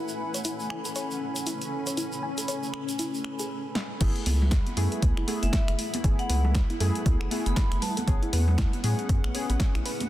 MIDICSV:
0, 0, Header, 1, 8, 480
1, 0, Start_track
1, 0, Key_signature, 3, "minor"
1, 0, Tempo, 508475
1, 1863, Time_signature, 4, 2, 24, 8
1, 9527, End_track
2, 0, Start_track
2, 0, Title_t, "Vibraphone"
2, 0, Program_c, 0, 11
2, 5124, Note_on_c, 0, 76, 88
2, 5187, Note_off_c, 0, 76, 0
2, 5222, Note_on_c, 0, 76, 76
2, 5313, Note_off_c, 0, 76, 0
2, 5844, Note_on_c, 0, 78, 87
2, 5908, Note_off_c, 0, 78, 0
2, 5942, Note_on_c, 0, 78, 79
2, 6033, Note_off_c, 0, 78, 0
2, 7044, Note_on_c, 0, 83, 94
2, 7363, Note_off_c, 0, 83, 0
2, 7382, Note_on_c, 0, 81, 94
2, 7679, Note_off_c, 0, 81, 0
2, 9527, End_track
3, 0, Start_track
3, 0, Title_t, "Analog synth pad"
3, 0, Program_c, 1, 89
3, 0, Note_on_c, 1, 61, 72
3, 0, Note_on_c, 1, 69, 66
3, 0, Note_on_c, 1, 80, 66
3, 0, Note_on_c, 1, 83, 78
3, 3745, Note_off_c, 1, 69, 0
3, 3745, Note_off_c, 1, 80, 0
3, 3745, Note_off_c, 1, 83, 0
3, 3746, Note_off_c, 1, 61, 0
3, 3783, Note_on_c, 1, 64, 80
3, 3783, Note_on_c, 1, 78, 69
3, 3784, Note_on_c, 1, 57, 72
3, 3784, Note_on_c, 1, 83, 85
3, 7586, Note_off_c, 1, 57, 0
3, 7586, Note_off_c, 1, 64, 0
3, 7586, Note_off_c, 1, 83, 0
3, 7624, Note_on_c, 1, 61, 77
3, 7624, Note_on_c, 1, 71, 72
3, 9527, Note_off_c, 1, 61, 0
3, 9527, Note_off_c, 1, 71, 0
3, 9527, Note_off_c, 1, 78, 0
3, 9527, End_track
4, 0, Start_track
4, 0, Title_t, "Synth arpeggio sound"
4, 0, Program_c, 2, 84
4, 324, Note_on_c, 2, 73, 68
4, 352, Note_off_c, 2, 73, 0
4, 423, Note_on_c, 2, 64, 77
4, 521, Note_off_c, 2, 64, 0
4, 663, Note_on_c, 2, 80, 97
4, 761, Note_off_c, 2, 80, 0
4, 805, Note_on_c, 2, 69, 70
4, 832, Note_off_c, 2, 69, 0
4, 903, Note_on_c, 2, 73, 92
4, 969, Note_off_c, 2, 73, 0
4, 1383, Note_on_c, 2, 64, 78
4, 1423, Note_off_c, 2, 64, 0
4, 1765, Note_on_c, 2, 73, 74
4, 1792, Note_off_c, 2, 73, 0
4, 1864, Note_on_c, 2, 64, 76
4, 1962, Note_off_c, 2, 64, 0
4, 2103, Note_on_c, 2, 80, 96
4, 2201, Note_off_c, 2, 80, 0
4, 2244, Note_on_c, 2, 69, 73
4, 2272, Note_off_c, 2, 69, 0
4, 2343, Note_on_c, 2, 73, 92
4, 2409, Note_off_c, 2, 73, 0
4, 2824, Note_on_c, 2, 64, 77
4, 2863, Note_off_c, 2, 64, 0
4, 3205, Note_on_c, 2, 68, 74
4, 3232, Note_off_c, 2, 68, 0
4, 3783, Note_on_c, 2, 64, 97
4, 3882, Note_off_c, 2, 64, 0
4, 4504, Note_on_c, 2, 71, 79
4, 4543, Note_off_c, 2, 71, 0
4, 4644, Note_on_c, 2, 69, 76
4, 4690, Note_off_c, 2, 69, 0
4, 4743, Note_on_c, 2, 71, 82
4, 4841, Note_off_c, 2, 71, 0
4, 4884, Note_on_c, 2, 64, 76
4, 4930, Note_off_c, 2, 64, 0
4, 4983, Note_on_c, 2, 69, 99
4, 5022, Note_off_c, 2, 69, 0
4, 5223, Note_on_c, 2, 64, 105
4, 5321, Note_off_c, 2, 64, 0
4, 5943, Note_on_c, 2, 71, 79
4, 5982, Note_off_c, 2, 71, 0
4, 6084, Note_on_c, 2, 69, 73
4, 6130, Note_off_c, 2, 69, 0
4, 6183, Note_on_c, 2, 71, 80
4, 6281, Note_off_c, 2, 71, 0
4, 6325, Note_on_c, 2, 64, 77
4, 6370, Note_off_c, 2, 64, 0
4, 6423, Note_on_c, 2, 69, 102
4, 6462, Note_off_c, 2, 69, 0
4, 6663, Note_on_c, 2, 64, 98
4, 6761, Note_off_c, 2, 64, 0
4, 7383, Note_on_c, 2, 71, 82
4, 7422, Note_off_c, 2, 71, 0
4, 7525, Note_on_c, 2, 69, 78
4, 7570, Note_off_c, 2, 69, 0
4, 7624, Note_on_c, 2, 73, 83
4, 7722, Note_off_c, 2, 73, 0
4, 7765, Note_on_c, 2, 64, 76
4, 7810, Note_off_c, 2, 64, 0
4, 7864, Note_on_c, 2, 71, 102
4, 7903, Note_off_c, 2, 71, 0
4, 8103, Note_on_c, 2, 64, 95
4, 8201, Note_off_c, 2, 64, 0
4, 8823, Note_on_c, 2, 73, 76
4, 8863, Note_off_c, 2, 73, 0
4, 8965, Note_on_c, 2, 71, 76
4, 9010, Note_off_c, 2, 71, 0
4, 9064, Note_on_c, 2, 73, 84
4, 9162, Note_off_c, 2, 73, 0
4, 9205, Note_on_c, 2, 64, 82
4, 9250, Note_off_c, 2, 64, 0
4, 9304, Note_on_c, 2, 71, 104
4, 9343, Note_off_c, 2, 71, 0
4, 9527, End_track
5, 0, Start_track
5, 0, Title_t, "Ambient pad"
5, 0, Program_c, 3, 92
5, 0, Note_on_c, 3, 57, 69
5, 0, Note_on_c, 3, 61, 76
5, 0, Note_on_c, 3, 64, 71
5, 0, Note_on_c, 3, 71, 81
5, 0, Note_on_c, 3, 78, 80
5, 0, Note_on_c, 3, 80, 83
5, 877, Note_off_c, 3, 78, 0
5, 1275, Note_off_c, 3, 64, 0
5, 3303, Note_off_c, 3, 57, 0
5, 3304, Note_off_c, 3, 61, 0
5, 3304, Note_off_c, 3, 71, 0
5, 3304, Note_off_c, 3, 80, 0
5, 3784, Note_on_c, 3, 64, 85
5, 3921, Note_on_c, 3, 57, 88
5, 4235, Note_on_c, 3, 71, 82
5, 4280, Note_on_c, 3, 78, 95
5, 7623, Note_on_c, 3, 61, 80
5, 8528, Note_off_c, 3, 64, 0
5, 9527, Note_off_c, 3, 57, 0
5, 9527, Note_off_c, 3, 61, 0
5, 9527, Note_off_c, 3, 71, 0
5, 9527, Note_off_c, 3, 78, 0
5, 9527, End_track
6, 0, Start_track
6, 0, Title_t, "Synth stab"
6, 0, Program_c, 4, 62
6, 3776, Note_on_c, 4, 57, 83
6, 3781, Note_on_c, 4, 59, 74
6, 3786, Note_on_c, 4, 64, 73
6, 3790, Note_on_c, 4, 68, 88
6, 4476, Note_off_c, 4, 57, 0
6, 4478, Note_off_c, 4, 59, 0
6, 4481, Note_off_c, 4, 64, 0
6, 4483, Note_off_c, 4, 68, 0
6, 4500, Note_on_c, 4, 57, 98
6, 4502, Note_on_c, 4, 59, 91
6, 4504, Note_on_c, 4, 64, 90
6, 4507, Note_on_c, 4, 68, 106
6, 4958, Note_off_c, 4, 57, 0
6, 4959, Note_off_c, 4, 59, 0
6, 4960, Note_off_c, 4, 64, 0
6, 4961, Note_off_c, 4, 68, 0
6, 4976, Note_on_c, 4, 57, 97
6, 4981, Note_on_c, 4, 59, 88
6, 4986, Note_on_c, 4, 64, 90
6, 4990, Note_on_c, 4, 68, 108
6, 5676, Note_off_c, 4, 57, 0
6, 5678, Note_off_c, 4, 59, 0
6, 5681, Note_off_c, 4, 64, 0
6, 5683, Note_off_c, 4, 68, 0
6, 5696, Note_on_c, 4, 57, 80
6, 5701, Note_on_c, 4, 59, 76
6, 5706, Note_on_c, 4, 64, 75
6, 5710, Note_on_c, 4, 68, 92
6, 6396, Note_off_c, 4, 57, 0
6, 6399, Note_off_c, 4, 59, 0
6, 6401, Note_off_c, 4, 64, 0
6, 6403, Note_off_c, 4, 68, 0
6, 6419, Note_on_c, 4, 57, 95
6, 6422, Note_on_c, 4, 59, 86
6, 6424, Note_on_c, 4, 64, 91
6, 6427, Note_on_c, 4, 68, 108
6, 6878, Note_off_c, 4, 57, 0
6, 6879, Note_off_c, 4, 59, 0
6, 6880, Note_off_c, 4, 64, 0
6, 6881, Note_off_c, 4, 68, 0
6, 6896, Note_on_c, 4, 57, 96
6, 6901, Note_on_c, 4, 59, 88
6, 6906, Note_on_c, 4, 64, 88
6, 6911, Note_on_c, 4, 68, 111
6, 7596, Note_off_c, 4, 57, 0
6, 7598, Note_off_c, 4, 59, 0
6, 7601, Note_off_c, 4, 64, 0
6, 7603, Note_off_c, 4, 68, 0
6, 7616, Note_on_c, 4, 59, 83
6, 7624, Note_on_c, 4, 61, 73
6, 7631, Note_on_c, 4, 68, 91
6, 8316, Note_off_c, 4, 59, 0
6, 8320, Note_off_c, 4, 61, 0
6, 8324, Note_off_c, 4, 68, 0
6, 8340, Note_on_c, 4, 59, 94
6, 8344, Note_on_c, 4, 61, 88
6, 8347, Note_on_c, 4, 68, 108
6, 8798, Note_off_c, 4, 59, 0
6, 8800, Note_off_c, 4, 61, 0
6, 8802, Note_off_c, 4, 68, 0
6, 8817, Note_on_c, 4, 59, 99
6, 8824, Note_on_c, 4, 61, 91
6, 8831, Note_on_c, 4, 68, 108
6, 9516, Note_off_c, 4, 59, 0
6, 9520, Note_off_c, 4, 61, 0
6, 9524, Note_off_c, 4, 68, 0
6, 9527, End_track
7, 0, Start_track
7, 0, Title_t, "Analog synth bass"
7, 0, Program_c, 5, 38
7, 3783, Note_on_c, 5, 30, 99
7, 3878, Note_off_c, 5, 30, 0
7, 4023, Note_on_c, 5, 37, 88
7, 4330, Note_off_c, 5, 37, 0
7, 4503, Note_on_c, 5, 42, 102
7, 4598, Note_off_c, 5, 42, 0
7, 4743, Note_on_c, 5, 37, 103
7, 4838, Note_off_c, 5, 37, 0
7, 4884, Note_on_c, 5, 30, 93
7, 4951, Note_off_c, 5, 30, 0
7, 5124, Note_on_c, 5, 30, 83
7, 5191, Note_off_c, 5, 30, 0
7, 5364, Note_on_c, 5, 30, 93
7, 5431, Note_off_c, 5, 30, 0
7, 5703, Note_on_c, 5, 30, 98
7, 5798, Note_off_c, 5, 30, 0
7, 5943, Note_on_c, 5, 37, 88
7, 6250, Note_off_c, 5, 37, 0
7, 6423, Note_on_c, 5, 42, 101
7, 6518, Note_off_c, 5, 42, 0
7, 6663, Note_on_c, 5, 37, 103
7, 6758, Note_off_c, 5, 37, 0
7, 6804, Note_on_c, 5, 30, 91
7, 6871, Note_off_c, 5, 30, 0
7, 7044, Note_on_c, 5, 30, 86
7, 7111, Note_off_c, 5, 30, 0
7, 7285, Note_on_c, 5, 30, 94
7, 7351, Note_off_c, 5, 30, 0
7, 7624, Note_on_c, 5, 33, 100
7, 7718, Note_off_c, 5, 33, 0
7, 7863, Note_on_c, 5, 40, 85
7, 8170, Note_off_c, 5, 40, 0
7, 8343, Note_on_c, 5, 45, 100
7, 8438, Note_off_c, 5, 45, 0
7, 8584, Note_on_c, 5, 42, 101
7, 8678, Note_off_c, 5, 42, 0
7, 8724, Note_on_c, 5, 33, 96
7, 8791, Note_off_c, 5, 33, 0
7, 8965, Note_on_c, 5, 33, 87
7, 9031, Note_off_c, 5, 33, 0
7, 9205, Note_on_c, 5, 33, 92
7, 9271, Note_off_c, 5, 33, 0
7, 9527, End_track
8, 0, Start_track
8, 0, Title_t, "Drums"
8, 78, Note_on_c, 9, 82, 41
8, 173, Note_off_c, 9, 82, 0
8, 324, Note_on_c, 9, 42, 48
8, 328, Note_on_c, 9, 82, 74
8, 418, Note_off_c, 9, 82, 0
8, 418, Note_on_c, 9, 82, 62
8, 419, Note_off_c, 9, 42, 0
8, 423, Note_on_c, 9, 42, 57
8, 512, Note_off_c, 9, 82, 0
8, 518, Note_off_c, 9, 42, 0
8, 564, Note_on_c, 9, 82, 36
8, 658, Note_off_c, 9, 82, 0
8, 663, Note_on_c, 9, 26, 68
8, 757, Note_off_c, 9, 26, 0
8, 802, Note_on_c, 9, 82, 74
8, 804, Note_on_c, 9, 42, 46
8, 897, Note_off_c, 9, 82, 0
8, 899, Note_off_c, 9, 42, 0
8, 901, Note_on_c, 9, 82, 66
8, 903, Note_on_c, 9, 42, 57
8, 995, Note_off_c, 9, 82, 0
8, 998, Note_off_c, 9, 42, 0
8, 1047, Note_on_c, 9, 82, 39
8, 1141, Note_off_c, 9, 82, 0
8, 1282, Note_on_c, 9, 82, 72
8, 1285, Note_on_c, 9, 42, 47
8, 1376, Note_off_c, 9, 82, 0
8, 1379, Note_off_c, 9, 42, 0
8, 1383, Note_on_c, 9, 82, 65
8, 1384, Note_on_c, 9, 42, 57
8, 1478, Note_off_c, 9, 42, 0
8, 1478, Note_off_c, 9, 82, 0
8, 1525, Note_on_c, 9, 42, 31
8, 1526, Note_on_c, 9, 82, 38
8, 1619, Note_off_c, 9, 42, 0
8, 1620, Note_off_c, 9, 82, 0
8, 1763, Note_on_c, 9, 82, 75
8, 1764, Note_on_c, 9, 42, 48
8, 1857, Note_off_c, 9, 82, 0
8, 1859, Note_off_c, 9, 42, 0
8, 1863, Note_on_c, 9, 42, 56
8, 1864, Note_on_c, 9, 82, 68
8, 1957, Note_off_c, 9, 42, 0
8, 1959, Note_off_c, 9, 82, 0
8, 2004, Note_on_c, 9, 82, 38
8, 2099, Note_off_c, 9, 82, 0
8, 2245, Note_on_c, 9, 42, 46
8, 2246, Note_on_c, 9, 82, 73
8, 2339, Note_off_c, 9, 42, 0
8, 2340, Note_off_c, 9, 82, 0
8, 2343, Note_on_c, 9, 42, 56
8, 2346, Note_on_c, 9, 82, 66
8, 2438, Note_off_c, 9, 42, 0
8, 2441, Note_off_c, 9, 82, 0
8, 2484, Note_on_c, 9, 82, 37
8, 2578, Note_off_c, 9, 82, 0
8, 2583, Note_on_c, 9, 26, 71
8, 2677, Note_off_c, 9, 26, 0
8, 2724, Note_on_c, 9, 42, 45
8, 2726, Note_on_c, 9, 82, 77
8, 2819, Note_off_c, 9, 42, 0
8, 2821, Note_off_c, 9, 82, 0
8, 2823, Note_on_c, 9, 42, 57
8, 2824, Note_on_c, 9, 82, 65
8, 2917, Note_off_c, 9, 42, 0
8, 2918, Note_off_c, 9, 82, 0
8, 2966, Note_on_c, 9, 82, 37
8, 3060, Note_off_c, 9, 82, 0
8, 3063, Note_on_c, 9, 26, 58
8, 3157, Note_off_c, 9, 26, 0
8, 3204, Note_on_c, 9, 42, 45
8, 3204, Note_on_c, 9, 82, 77
8, 3299, Note_off_c, 9, 42, 0
8, 3299, Note_off_c, 9, 82, 0
8, 3542, Note_on_c, 9, 38, 82
8, 3637, Note_off_c, 9, 38, 0
8, 3782, Note_on_c, 9, 42, 84
8, 3782, Note_on_c, 9, 49, 105
8, 3783, Note_on_c, 9, 36, 121
8, 3877, Note_off_c, 9, 42, 0
8, 3877, Note_off_c, 9, 49, 0
8, 3878, Note_off_c, 9, 36, 0
8, 3923, Note_on_c, 9, 42, 39
8, 4018, Note_off_c, 9, 42, 0
8, 4022, Note_on_c, 9, 46, 108
8, 4027, Note_on_c, 9, 63, 98
8, 4117, Note_off_c, 9, 46, 0
8, 4121, Note_off_c, 9, 63, 0
8, 4171, Note_on_c, 9, 64, 94
8, 4258, Note_on_c, 9, 38, 124
8, 4263, Note_on_c, 9, 36, 122
8, 4263, Note_on_c, 9, 42, 82
8, 4266, Note_off_c, 9, 64, 0
8, 4353, Note_off_c, 9, 38, 0
8, 4357, Note_off_c, 9, 42, 0
8, 4358, Note_off_c, 9, 36, 0
8, 4403, Note_on_c, 9, 63, 66
8, 4404, Note_on_c, 9, 42, 38
8, 4497, Note_off_c, 9, 63, 0
8, 4498, Note_off_c, 9, 42, 0
8, 4502, Note_on_c, 9, 46, 99
8, 4503, Note_on_c, 9, 64, 78
8, 4597, Note_off_c, 9, 46, 0
8, 4597, Note_off_c, 9, 64, 0
8, 4644, Note_on_c, 9, 42, 36
8, 4738, Note_off_c, 9, 42, 0
8, 4743, Note_on_c, 9, 36, 122
8, 4743, Note_on_c, 9, 42, 81
8, 4744, Note_on_c, 9, 63, 93
8, 4837, Note_off_c, 9, 42, 0
8, 4838, Note_off_c, 9, 36, 0
8, 4838, Note_off_c, 9, 63, 0
8, 4884, Note_on_c, 9, 26, 62
8, 4978, Note_off_c, 9, 26, 0
8, 4982, Note_on_c, 9, 46, 106
8, 5077, Note_off_c, 9, 46, 0
8, 5123, Note_on_c, 9, 63, 60
8, 5124, Note_on_c, 9, 42, 55
8, 5218, Note_off_c, 9, 42, 0
8, 5218, Note_off_c, 9, 63, 0
8, 5219, Note_on_c, 9, 38, 122
8, 5223, Note_on_c, 9, 36, 116
8, 5223, Note_on_c, 9, 42, 78
8, 5313, Note_off_c, 9, 38, 0
8, 5317, Note_off_c, 9, 42, 0
8, 5318, Note_off_c, 9, 36, 0
8, 5364, Note_on_c, 9, 26, 59
8, 5364, Note_on_c, 9, 42, 38
8, 5458, Note_off_c, 9, 26, 0
8, 5458, Note_off_c, 9, 42, 0
8, 5463, Note_on_c, 9, 46, 103
8, 5557, Note_off_c, 9, 46, 0
8, 5604, Note_on_c, 9, 42, 57
8, 5611, Note_on_c, 9, 63, 101
8, 5698, Note_off_c, 9, 42, 0
8, 5703, Note_on_c, 9, 36, 123
8, 5703, Note_on_c, 9, 42, 77
8, 5706, Note_off_c, 9, 63, 0
8, 5797, Note_off_c, 9, 42, 0
8, 5798, Note_off_c, 9, 36, 0
8, 5844, Note_on_c, 9, 42, 36
8, 5939, Note_off_c, 9, 42, 0
8, 5943, Note_on_c, 9, 46, 107
8, 5944, Note_on_c, 9, 63, 94
8, 6037, Note_off_c, 9, 46, 0
8, 6038, Note_off_c, 9, 63, 0
8, 6084, Note_on_c, 9, 64, 89
8, 6179, Note_off_c, 9, 64, 0
8, 6179, Note_on_c, 9, 38, 122
8, 6183, Note_on_c, 9, 36, 124
8, 6183, Note_on_c, 9, 42, 79
8, 6274, Note_off_c, 9, 38, 0
8, 6278, Note_off_c, 9, 36, 0
8, 6278, Note_off_c, 9, 42, 0
8, 6322, Note_on_c, 9, 63, 65
8, 6325, Note_on_c, 9, 42, 38
8, 6417, Note_off_c, 9, 63, 0
8, 6419, Note_off_c, 9, 42, 0
8, 6423, Note_on_c, 9, 46, 106
8, 6424, Note_on_c, 9, 64, 84
8, 6518, Note_off_c, 9, 46, 0
8, 6519, Note_off_c, 9, 64, 0
8, 6565, Note_on_c, 9, 42, 35
8, 6659, Note_off_c, 9, 42, 0
8, 6663, Note_on_c, 9, 36, 125
8, 6663, Note_on_c, 9, 42, 81
8, 6664, Note_on_c, 9, 63, 102
8, 6758, Note_off_c, 9, 36, 0
8, 6758, Note_off_c, 9, 42, 0
8, 6758, Note_off_c, 9, 63, 0
8, 6804, Note_on_c, 9, 26, 63
8, 6899, Note_off_c, 9, 26, 0
8, 6904, Note_on_c, 9, 46, 108
8, 6998, Note_off_c, 9, 46, 0
8, 7042, Note_on_c, 9, 63, 70
8, 7044, Note_on_c, 9, 42, 53
8, 7137, Note_off_c, 9, 63, 0
8, 7139, Note_off_c, 9, 42, 0
8, 7139, Note_on_c, 9, 38, 122
8, 7143, Note_on_c, 9, 36, 123
8, 7144, Note_on_c, 9, 42, 79
8, 7234, Note_off_c, 9, 38, 0
8, 7238, Note_off_c, 9, 36, 0
8, 7238, Note_off_c, 9, 42, 0
8, 7285, Note_on_c, 9, 26, 55
8, 7285, Note_on_c, 9, 42, 36
8, 7379, Note_off_c, 9, 26, 0
8, 7379, Note_off_c, 9, 42, 0
8, 7380, Note_on_c, 9, 64, 86
8, 7383, Note_on_c, 9, 46, 111
8, 7474, Note_off_c, 9, 64, 0
8, 7478, Note_off_c, 9, 46, 0
8, 7525, Note_on_c, 9, 42, 54
8, 7537, Note_on_c, 9, 63, 103
8, 7619, Note_off_c, 9, 42, 0
8, 7623, Note_on_c, 9, 42, 78
8, 7624, Note_on_c, 9, 36, 125
8, 7631, Note_off_c, 9, 63, 0
8, 7718, Note_off_c, 9, 36, 0
8, 7718, Note_off_c, 9, 42, 0
8, 7765, Note_on_c, 9, 42, 35
8, 7859, Note_off_c, 9, 42, 0
8, 7861, Note_on_c, 9, 63, 95
8, 7863, Note_on_c, 9, 46, 109
8, 7956, Note_off_c, 9, 63, 0
8, 7958, Note_off_c, 9, 46, 0
8, 8002, Note_on_c, 9, 64, 97
8, 8097, Note_off_c, 9, 64, 0
8, 8099, Note_on_c, 9, 38, 120
8, 8103, Note_on_c, 9, 42, 76
8, 8104, Note_on_c, 9, 36, 125
8, 8193, Note_off_c, 9, 38, 0
8, 8197, Note_off_c, 9, 42, 0
8, 8198, Note_off_c, 9, 36, 0
8, 8244, Note_on_c, 9, 42, 37
8, 8249, Note_on_c, 9, 63, 73
8, 8339, Note_off_c, 9, 42, 0
8, 8341, Note_on_c, 9, 64, 75
8, 8343, Note_off_c, 9, 63, 0
8, 8343, Note_on_c, 9, 46, 105
8, 8435, Note_off_c, 9, 64, 0
8, 8437, Note_off_c, 9, 46, 0
8, 8484, Note_on_c, 9, 42, 34
8, 8579, Note_off_c, 9, 42, 0
8, 8584, Note_on_c, 9, 36, 127
8, 8584, Note_on_c, 9, 42, 78
8, 8587, Note_on_c, 9, 63, 97
8, 8678, Note_off_c, 9, 36, 0
8, 8678, Note_off_c, 9, 42, 0
8, 8681, Note_off_c, 9, 63, 0
8, 8725, Note_on_c, 9, 26, 67
8, 8819, Note_off_c, 9, 26, 0
8, 8823, Note_on_c, 9, 46, 115
8, 8917, Note_off_c, 9, 46, 0
8, 8962, Note_on_c, 9, 63, 71
8, 8964, Note_on_c, 9, 42, 50
8, 9056, Note_off_c, 9, 63, 0
8, 9059, Note_off_c, 9, 42, 0
8, 9059, Note_on_c, 9, 38, 118
8, 9063, Note_on_c, 9, 42, 75
8, 9064, Note_on_c, 9, 36, 127
8, 9154, Note_off_c, 9, 38, 0
8, 9158, Note_off_c, 9, 36, 0
8, 9158, Note_off_c, 9, 42, 0
8, 9205, Note_on_c, 9, 26, 58
8, 9205, Note_on_c, 9, 42, 35
8, 9300, Note_off_c, 9, 26, 0
8, 9300, Note_off_c, 9, 42, 0
8, 9303, Note_on_c, 9, 46, 108
8, 9398, Note_off_c, 9, 46, 0
8, 9444, Note_on_c, 9, 42, 53
8, 9448, Note_on_c, 9, 63, 96
8, 9527, Note_off_c, 9, 42, 0
8, 9527, Note_off_c, 9, 63, 0
8, 9527, End_track
0, 0, End_of_file